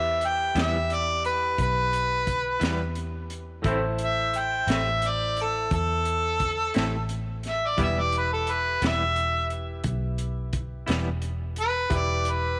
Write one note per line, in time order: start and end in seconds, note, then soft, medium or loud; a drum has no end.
0.00 0.52 E2 medium
0.00 3.61 E4 soft
0.00 3.61 G4 soft
0.00 3.62 B4 soft
0.00 0.22 E5 medium
0.21 closed hi-hat soft
0.25 0.63 G5 medium
0.55 1.54 E2 medium
0.55 0.77 E3 soft
0.55 0.77 G3 soft
0.55 0.76 B3 soft
0.55 0.76 E4 medium
0.55 snare medium
0.55 closed hi-hat medium
0.62 0.94 E5 medium
0.90 1.25 D5 medium
0.90 closed hi-hat medium
1.25 1.58 B4 medium
1.25 closed hi-hat soft
1.58 2.58 B1 medium
1.58 2.94 B4 medium
1.58 kick medium
1.58 closed hi-hat medium
1.93 closed hi-hat medium
2.27 kick medium
2.27 closed hi-hat soft
2.60 3.61 E2 medium
2.60 2.83 E3 soft
2.60 2.82 G3 medium
2.60 2.82 B3 medium
2.60 2.81 E4 medium
2.60 snare medium
2.60 closed hi-hat medium
2.95 closed hi-hat medium
3.30 closed hi-hat medium
3.62 4.64 A1 medium
3.62 3.84 A2 medium
3.62 3.85 A3 medium
3.62 3.85 C4 medium
3.62 3.86 E4 medium
3.62 7.74 E4 medium
3.62 7.74 A4 soft
3.62 kick medium
3.62 closed hi-hat medium
3.66 7.75 C5 medium
3.98 closed hi-hat medium
4.04 4.39 E5 medium
4.34 closed hi-hat medium
4.38 4.72 G5 medium
4.67 5.67 A1 medium
4.67 4.89 A2 soft
4.67 4.89 A3 soft
4.67 4.89 C4 medium
4.67 4.88 E4 medium
4.67 5.08 E5 medium
4.67 snare medium
4.67 closed hi-hat medium
5.02 closed hi-hat medium
5.07 5.38 D5 medium
5.37 closed hi-hat soft
5.41 5.73 A4 medium
5.71 6.71 E2 medium
5.71 7.06 A4 medium
5.71 kick medium
5.71 closed hi-hat medium
6.05 closed hi-hat medium
6.40 kick medium
6.40 closed hi-hat soft
6.74 7.75 A1 medium
6.74 6.96 A2 soft
6.74 6.96 A3 medium
6.74 6.95 C4 medium
6.74 6.95 E4 medium
6.74 snare medium
6.74 closed hi-hat medium
7.09 closed hi-hat medium
7.43 snare soft
7.43 closed hi-hat soft
7.48 7.68 E5 medium
7.66 7.80 D5 medium
7.77 8.77 E1 medium
7.77 7.98 E3 medium
7.77 7.99 G3 medium
7.77 7.99 B3 medium
7.77 11.87 E4 soft
7.77 7.99 E4 medium
7.77 11.87 G4 soft
7.77 11.87 B4 soft
7.77 kick medium
7.77 closed hi-hat medium
7.83 8.01 E5 medium
8.00 8.13 D5 medium
8.12 closed hi-hat soft
8.17 8.31 B4 medium
8.33 8.53 A4 medium
8.47 closed hi-hat medium
8.51 8.83 B4 medium
8.82 9.81 E1 medium
8.82 9.03 E3 soft
8.82 9.03 G3 soft
8.82 9.02 B3 medium
8.82 9.02 E4 medium
8.82 snare medium
8.82 closed hi-hat medium
8.87 9.51 E5 medium
9.16 closed hi-hat medium
9.50 closed hi-hat soft
9.84 10.84 B1 medium
9.84 kick medium
9.84 closed hi-hat medium
10.18 closed hi-hat medium
10.53 kick medium
10.53 closed hi-hat medium
10.87 11.87 E1 medium
10.87 11.09 E3 soft
10.87 11.08 G3 soft
10.87 11.08 B3 medium
10.87 11.08 E4 medium
10.87 snare medium
10.87 closed hi-hat medium
11.22 closed hi-hat medium
11.56 closed hi-hat medium
11.61 11.99 B4 medium
11.90 12.60 E1 medium
11.90 12.60 E4 soft
11.90 12.60 G4 soft
11.90 12.60 B4 medium
11.90 kick medium
11.90 closed hi-hat medium
11.97 12.33 D5 medium
12.25 closed hi-hat medium
12.31 12.60 B4 medium